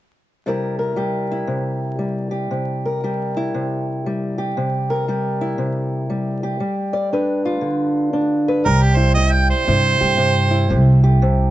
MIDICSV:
0, 0, Header, 1, 4, 480
1, 0, Start_track
1, 0, Tempo, 511945
1, 432, Time_signature, 4, 2, 24, 8
1, 10788, End_track
2, 0, Start_track
2, 0, Title_t, "Harmonica"
2, 0, Program_c, 0, 22
2, 8113, Note_on_c, 0, 70, 85
2, 8274, Note_on_c, 0, 67, 73
2, 8288, Note_off_c, 0, 70, 0
2, 8415, Note_on_c, 0, 72, 81
2, 8429, Note_off_c, 0, 67, 0
2, 8569, Note_off_c, 0, 72, 0
2, 8574, Note_on_c, 0, 75, 77
2, 8735, Note_on_c, 0, 79, 70
2, 8749, Note_off_c, 0, 75, 0
2, 8899, Note_off_c, 0, 79, 0
2, 8908, Note_on_c, 0, 72, 99
2, 10312, Note_off_c, 0, 72, 0
2, 10788, End_track
3, 0, Start_track
3, 0, Title_t, "Steel-string acoustic guitar"
3, 0, Program_c, 1, 25
3, 432, Note_on_c, 1, 48, 53
3, 436, Note_on_c, 1, 55, 46
3, 445, Note_on_c, 1, 64, 44
3, 450, Note_on_c, 1, 70, 50
3, 458, Note_on_c, 1, 67, 43
3, 735, Note_off_c, 1, 70, 0
3, 739, Note_on_c, 1, 70, 52
3, 898, Note_off_c, 1, 55, 0
3, 902, Note_on_c, 1, 55, 49
3, 906, Note_off_c, 1, 67, 0
3, 910, Note_on_c, 1, 67, 46
3, 1229, Note_off_c, 1, 64, 0
3, 1232, Note_on_c, 1, 64, 50
3, 1378, Note_off_c, 1, 48, 0
3, 1382, Note_on_c, 1, 48, 54
3, 1859, Note_off_c, 1, 55, 0
3, 1863, Note_on_c, 1, 55, 53
3, 2162, Note_off_c, 1, 67, 0
3, 2165, Note_on_c, 1, 67, 52
3, 2347, Note_off_c, 1, 48, 0
3, 2351, Note_on_c, 1, 48, 57
3, 2379, Note_off_c, 1, 70, 0
3, 2676, Note_on_c, 1, 70, 51
3, 2704, Note_off_c, 1, 64, 0
3, 2843, Note_off_c, 1, 55, 0
3, 2846, Note_on_c, 1, 55, 47
3, 2848, Note_off_c, 1, 67, 0
3, 2852, Note_on_c, 1, 67, 48
3, 3157, Note_on_c, 1, 64, 53
3, 3319, Note_off_c, 1, 48, 0
3, 3323, Note_on_c, 1, 48, 59
3, 3805, Note_off_c, 1, 55, 0
3, 3809, Note_on_c, 1, 55, 55
3, 4104, Note_off_c, 1, 67, 0
3, 4108, Note_on_c, 1, 67, 54
3, 4257, Note_off_c, 1, 48, 0
3, 4260, Note_off_c, 1, 70, 0
3, 4261, Note_off_c, 1, 64, 0
3, 4285, Note_on_c, 1, 48, 61
3, 4594, Note_on_c, 1, 70, 55
3, 4761, Note_off_c, 1, 55, 0
3, 4765, Note_on_c, 1, 55, 55
3, 4767, Note_off_c, 1, 67, 0
3, 4771, Note_on_c, 1, 67, 50
3, 5075, Note_on_c, 1, 64, 53
3, 5220, Note_off_c, 1, 48, 0
3, 5231, Note_on_c, 1, 48, 57
3, 5712, Note_off_c, 1, 55, 0
3, 5716, Note_on_c, 1, 55, 57
3, 6026, Note_off_c, 1, 67, 0
3, 6030, Note_on_c, 1, 67, 56
3, 6172, Note_off_c, 1, 48, 0
3, 6180, Note_off_c, 1, 64, 0
3, 6180, Note_off_c, 1, 70, 0
3, 6186, Note_off_c, 1, 55, 0
3, 6190, Note_on_c, 1, 55, 55
3, 6499, Note_on_c, 1, 74, 56
3, 6672, Note_off_c, 1, 74, 0
3, 6680, Note_on_c, 1, 62, 51
3, 6687, Note_on_c, 1, 71, 57
3, 6985, Note_off_c, 1, 67, 0
3, 6989, Note_on_c, 1, 65, 56
3, 7136, Note_on_c, 1, 50, 56
3, 7612, Note_off_c, 1, 62, 0
3, 7623, Note_on_c, 1, 62, 57
3, 7942, Note_off_c, 1, 71, 0
3, 7953, Note_on_c, 1, 71, 61
3, 8087, Note_off_c, 1, 62, 0
3, 8096, Note_off_c, 1, 65, 0
3, 8098, Note_off_c, 1, 71, 0
3, 8104, Note_off_c, 1, 50, 0
3, 8111, Note_on_c, 1, 48, 60
3, 8118, Note_on_c, 1, 67, 46
3, 8407, Note_on_c, 1, 64, 56
3, 8593, Note_off_c, 1, 48, 0
3, 8597, Note_on_c, 1, 48, 66
3, 9066, Note_off_c, 1, 48, 0
3, 9070, Note_on_c, 1, 48, 68
3, 9074, Note_off_c, 1, 64, 0
3, 9078, Note_on_c, 1, 64, 57
3, 9378, Note_off_c, 1, 67, 0
3, 9382, Note_on_c, 1, 67, 57
3, 9534, Note_off_c, 1, 48, 0
3, 9538, Note_on_c, 1, 48, 68
3, 9848, Note_off_c, 1, 64, 0
3, 9852, Note_on_c, 1, 64, 55
3, 10028, Note_off_c, 1, 48, 0
3, 10030, Note_off_c, 1, 55, 0
3, 10032, Note_on_c, 1, 48, 59
3, 10039, Note_off_c, 1, 67, 0
3, 10043, Note_on_c, 1, 67, 55
3, 10344, Note_off_c, 1, 67, 0
3, 10347, Note_on_c, 1, 67, 57
3, 10516, Note_off_c, 1, 48, 0
3, 10520, Note_on_c, 1, 48, 69
3, 10788, Note_off_c, 1, 48, 0
3, 10788, Note_off_c, 1, 64, 0
3, 10788, Note_off_c, 1, 67, 0
3, 10788, End_track
4, 0, Start_track
4, 0, Title_t, "Upright bass"
4, 0, Program_c, 2, 32
4, 8118, Note_on_c, 2, 36, 92
4, 8914, Note_off_c, 2, 36, 0
4, 9075, Note_on_c, 2, 43, 90
4, 9330, Note_off_c, 2, 43, 0
4, 9385, Note_on_c, 2, 43, 79
4, 10035, Note_on_c, 2, 36, 93
4, 10049, Note_off_c, 2, 43, 0
4, 10788, Note_off_c, 2, 36, 0
4, 10788, End_track
0, 0, End_of_file